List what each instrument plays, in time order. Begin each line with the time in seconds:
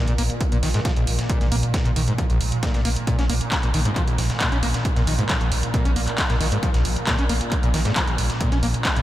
Already playing: synth drone A#2
0.08 sub bass A#1, acid bass A#2, closed hi-hat
0.18 sub bass A#1, acid bass A#3, closed hi-hat, open hi-hat
0.30 closed hi-hat
0.41 kick, closed hi-hat
0.52 sub bass A#1, acid bass A#2, closed hi-hat
0.63 sub bass A#1, acid bass D#3, snare, closed hi-hat, open hi-hat
0.74 acid bass G#2, snare, closed hi-hat
0.85 acid bass F3, kick, snare, closed hi-hat
0.96 acid bass A#1, sub bass A#1, closed hi-hat
1.07 sub bass A#1, closed hi-hat, open hi-hat
1.19 snare, closed hi-hat
1.30 acid bass A#2, kick, closed hi-hat
1.41 sub bass A#1, acid bass A#2, snare, closed hi-hat
1.52 sub bass A#1, acid bass A#3, closed hi-hat, open hi-hat
1.63 closed hi-hat
1.74 kick, snare, closed hi-hat
1.85 sub bass A#1, acid bass A#2, closed hi-hat
1.96 sub bass A#1, acid bass D#3, closed hi-hat, open hi-hat
2.08 acid bass G#2, closed hi-hat
2.18 acid bass F3, kick, closed hi-hat
2.30 acid bass A#1, sub bass A#1, closed hi-hat
2.41 sub bass A#1, closed hi-hat, open hi-hat
2.52 closed hi-hat
2.63 acid bass A#2, kick, snare, closed hi-hat
2.74 sub bass A#1, acid bass A#2, snare, closed hi-hat
2.85 sub bass A#1, acid bass A#3, open hi-hat
2.96 closed hi-hat
3.07 acid bass A#2, kick, closed hi-hat
3.19 sub bass A#1, acid bass C#4, snare, closed hi-hat
3.29 sub bass A#1, acid bass A#3, closed hi-hat, open hi-hat
3.41 closed hi-hat
3.52 kick, snare, clap, closed hi-hat
3.63 sub bass A#1, acid bass A#2, closed hi-hat
3.74 sub bass A#1, acid bass D#3, closed hi-hat, open hi-hat
3.85 acid bass G#2, closed hi-hat
3.96 acid bass F3, kick, clap, closed hi-hat
4.08 sub bass A#1, acid bass A#1, closed hi-hat
4.18 sub bass A#1, snare, closed hi-hat, open hi-hat
4.30 snare, closed hi-hat
4.41 acid bass A#2, kick, snare, clap, closed hi-hat
4.52 sub bass A#1, acid bass C#4, closed hi-hat
4.63 sub bass A#1, acid bass A#3, closed hi-hat, open hi-hat
4.74 snare, closed hi-hat
4.85 kick, closed hi-hat
4.96 sub bass A#1, acid bass A#2, snare, closed hi-hat
5.07 sub bass A#1, acid bass D#3, closed hi-hat, open hi-hat
5.19 acid bass G#2, closed hi-hat
5.29 acid bass F3, kick, snare, clap, closed hi-hat
5.41 sub bass A#1, acid bass A#1, closed hi-hat
5.52 sub bass A#1, closed hi-hat, open hi-hat
5.63 closed hi-hat
5.74 acid bass A#2, kick, closed hi-hat
5.85 sub bass A#1, acid bass C#4, closed hi-hat
5.96 sub bass A#1, acid bass A#3, closed hi-hat, open hi-hat
6.08 clap, closed hi-hat
6.18 kick, snare, clap, closed hi-hat
6.30 sub bass A#1, acid bass A#2, snare, closed hi-hat
6.41 sub bass A#1, acid bass D#3, open hi-hat
6.52 acid bass G#2, closed hi-hat
6.63 acid bass F3, kick, closed hi-hat
6.74 sub bass A#1, acid bass A#1, snare, closed hi-hat
6.85 sub bass A#1, closed hi-hat, open hi-hat
6.96 closed hi-hat
7.07 acid bass A#2, kick, snare, clap, closed hi-hat
7.19 sub bass A#1, acid bass C#4, closed hi-hat
7.29 sub bass A#1, acid bass A#3, closed hi-hat, open hi-hat
7.41 closed hi-hat
7.52 kick, clap, closed hi-hat
7.63 sub bass A#1, acid bass A#2, closed hi-hat
7.74 sub bass A#1, acid bass D#3, snare, closed hi-hat, open hi-hat
7.85 acid bass G#2, snare, closed hi-hat
7.96 acid bass F3, kick, snare, clap, closed hi-hat
8.07 sub bass A#1, acid bass A#1, closed hi-hat
8.18 sub bass A#1, closed hi-hat, open hi-hat
8.30 snare, closed hi-hat
8.41 acid bass A#2, kick, closed hi-hat
8.52 sub bass A#1, acid bass C#4, snare, closed hi-hat
8.63 sub bass A#1, acid bass A#3, closed hi-hat, open hi-hat
8.74 closed hi-hat
8.85 kick, snare, clap, closed hi-hat
8.96 sub bass A#1, acid bass A#2, closed hi-hat